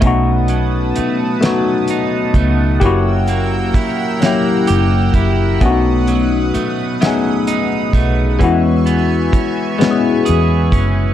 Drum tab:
HH |xxxxxx|xxxxxx|xxxxxx|xxxxxx|
SD |---o--|---o--|---o--|---o--|
BD |o----o|o-o--o|o----o|o-o--o|